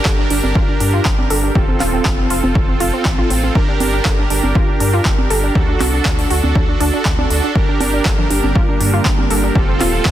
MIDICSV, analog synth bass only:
0, 0, Header, 1, 2, 480
1, 0, Start_track
1, 0, Key_signature, -2, "minor"
1, 0, Tempo, 500000
1, 1492, Time_signature, 4, 2, 24, 8
1, 9706, End_track
2, 0, Start_track
2, 0, Title_t, "Analog synth bass"
2, 0, Program_c, 0, 38
2, 52, Note_on_c, 0, 31, 89
2, 242, Note_off_c, 0, 31, 0
2, 292, Note_on_c, 0, 31, 98
2, 391, Note_off_c, 0, 31, 0
2, 418, Note_on_c, 0, 31, 102
2, 508, Note_off_c, 0, 31, 0
2, 532, Note_on_c, 0, 31, 104
2, 631, Note_off_c, 0, 31, 0
2, 772, Note_on_c, 0, 43, 86
2, 963, Note_off_c, 0, 43, 0
2, 1012, Note_on_c, 0, 31, 79
2, 1203, Note_off_c, 0, 31, 0
2, 1252, Note_on_c, 0, 31, 89
2, 1443, Note_off_c, 0, 31, 0
2, 1492, Note_on_c, 0, 29, 105
2, 1682, Note_off_c, 0, 29, 0
2, 1733, Note_on_c, 0, 27, 86
2, 1923, Note_off_c, 0, 27, 0
2, 1972, Note_on_c, 0, 29, 94
2, 2162, Note_off_c, 0, 29, 0
2, 2212, Note_on_c, 0, 29, 92
2, 2311, Note_off_c, 0, 29, 0
2, 2338, Note_on_c, 0, 29, 85
2, 2427, Note_off_c, 0, 29, 0
2, 2452, Note_on_c, 0, 29, 81
2, 2642, Note_off_c, 0, 29, 0
2, 2692, Note_on_c, 0, 29, 93
2, 2791, Note_off_c, 0, 29, 0
2, 2932, Note_on_c, 0, 33, 87
2, 3122, Note_off_c, 0, 33, 0
2, 3172, Note_on_c, 0, 33, 88
2, 3362, Note_off_c, 0, 33, 0
2, 3411, Note_on_c, 0, 31, 93
2, 3510, Note_off_c, 0, 31, 0
2, 3652, Note_on_c, 0, 31, 81
2, 3843, Note_off_c, 0, 31, 0
2, 3891, Note_on_c, 0, 31, 90
2, 4082, Note_off_c, 0, 31, 0
2, 4132, Note_on_c, 0, 31, 96
2, 4231, Note_off_c, 0, 31, 0
2, 4257, Note_on_c, 0, 31, 101
2, 4347, Note_off_c, 0, 31, 0
2, 4372, Note_on_c, 0, 31, 105
2, 4471, Note_off_c, 0, 31, 0
2, 4611, Note_on_c, 0, 43, 81
2, 4802, Note_off_c, 0, 43, 0
2, 4852, Note_on_c, 0, 31, 77
2, 5042, Note_off_c, 0, 31, 0
2, 5091, Note_on_c, 0, 31, 91
2, 5282, Note_off_c, 0, 31, 0
2, 5332, Note_on_c, 0, 38, 101
2, 5522, Note_off_c, 0, 38, 0
2, 5572, Note_on_c, 0, 36, 87
2, 5763, Note_off_c, 0, 36, 0
2, 5812, Note_on_c, 0, 38, 98
2, 6003, Note_off_c, 0, 38, 0
2, 6053, Note_on_c, 0, 38, 86
2, 6151, Note_off_c, 0, 38, 0
2, 6178, Note_on_c, 0, 38, 85
2, 6268, Note_off_c, 0, 38, 0
2, 6292, Note_on_c, 0, 38, 81
2, 6483, Note_off_c, 0, 38, 0
2, 6532, Note_on_c, 0, 38, 99
2, 6631, Note_off_c, 0, 38, 0
2, 6773, Note_on_c, 0, 38, 85
2, 6963, Note_off_c, 0, 38, 0
2, 7012, Note_on_c, 0, 38, 81
2, 7111, Note_off_c, 0, 38, 0
2, 7253, Note_on_c, 0, 31, 98
2, 7351, Note_off_c, 0, 31, 0
2, 7492, Note_on_c, 0, 31, 79
2, 7683, Note_off_c, 0, 31, 0
2, 7733, Note_on_c, 0, 31, 93
2, 7923, Note_off_c, 0, 31, 0
2, 7972, Note_on_c, 0, 31, 95
2, 8071, Note_off_c, 0, 31, 0
2, 8099, Note_on_c, 0, 31, 100
2, 8188, Note_off_c, 0, 31, 0
2, 8213, Note_on_c, 0, 31, 105
2, 8311, Note_off_c, 0, 31, 0
2, 8453, Note_on_c, 0, 43, 86
2, 8643, Note_off_c, 0, 43, 0
2, 8693, Note_on_c, 0, 31, 76
2, 8883, Note_off_c, 0, 31, 0
2, 8933, Note_on_c, 0, 31, 95
2, 9123, Note_off_c, 0, 31, 0
2, 9173, Note_on_c, 0, 29, 99
2, 9363, Note_off_c, 0, 29, 0
2, 9413, Note_on_c, 0, 27, 88
2, 9603, Note_off_c, 0, 27, 0
2, 9652, Note_on_c, 0, 29, 96
2, 9706, Note_off_c, 0, 29, 0
2, 9706, End_track
0, 0, End_of_file